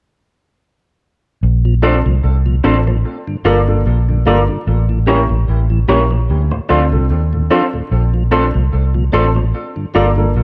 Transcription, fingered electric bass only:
1.43 2.02 A#1 loud
2.06 2.23 C2 medium
2.24 2.62 C2 medium
2.65 3.02 A1 medium
3.45 3.83 G1 medium
3.86 4.24 A#1 medium
4.26 4.48 G1 medium
4.67 5.26 A1 loud
5.30 5.47 A1 medium
5.48 5.86 A1 medium
5.89 6.27 A#1 medium
6.30 6.51 D2 loud
6.70 6.91 D2 medium
6.92 7.09 C2 medium
7.11 7.49 D#2 medium
7.91 8.51 A#1 loud
8.55 8.72 C2 medium
8.73 9.11 C2 medium
9.14 9.52 A1 medium
9.96 10.33 G1 medium
10.36 10.43 A#1 medium

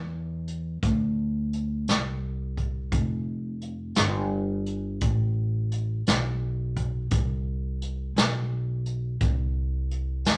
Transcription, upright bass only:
0.00 0.80 E2 medium
0.83 1.85 D2 medium
1.89 2.90 C2 medium
2.92 3.94 F1 medium
3.98 5.00 G1 medium
5.02 6.04 A1 medium
6.08 7.09 B1 medium
7.12 8.14 C2 medium
8.16 9.18 B1 medium
9.21 10.23 C2 medium
10.26 10.37 E2 medium

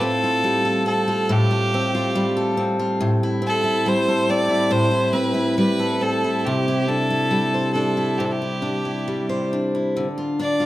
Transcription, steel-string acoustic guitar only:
0.00 1.28 A2 medium
0.00 0.86 C4 soft
0.00 0.22 F4 medium
0.24 1.06 F4 medium
0.44 2.15 G3 medium
0.65 2.36 A4 medium
0.86 1.74 C4 soft
1.08 1.50 F4 medium
1.29 2.99 A2 medium
1.51 1.93 F4 medium
1.74 2.57 C4 medium
1.95 2.78 F4 medium
2.15 3.86 G3 medium
2.37 3.89 A4 medium
2.57 3.41 C4 medium
2.79 3.10 F4 medium
3.01 4.69 A2 medium
3.23 3.63 E4 medium
3.42 4.29 C4 soft
3.64 4.49 E4 soft
3.86 5.57 G3 medium
4.08 5.78 A4 medium
4.29 5.13 C4 soft
4.50 4.91 E4 soft
4.71 6.45 A2 medium
4.91 5.34 E4 soft
5.13 6.01 C4 soft
5.34 6.24 E4 soft
5.58 7.30 G3 medium
5.79 6.54 A4 medium
6.01 6.88 C4 soft
6.24 6.68 E4 soft
6.46 8.18 C3 medium
6.68 7.09 E4 soft
6.88 7.75 D4 soft
7.10 7.96 E4 soft
7.31 9.06 G3 medium
7.54 9.28 C5 soft
7.75 8.62 D4 soft
7.97 8.41 E4 soft
8.20 10.07 C3 medium
8.42 8.84 E4 soft
8.62 9.52 D4 soft
8.85 9.74 E4 soft
9.08 10.06 G3 soft
9.29 10.05 C5 soft
9.53 10.39 D4 soft
9.75 10.06 E4 soft
9.97 10.66 D3 medium
10.18 10.59 F4 soft
10.39 10.66 D4 soft
10.60 10.66 F4 soft

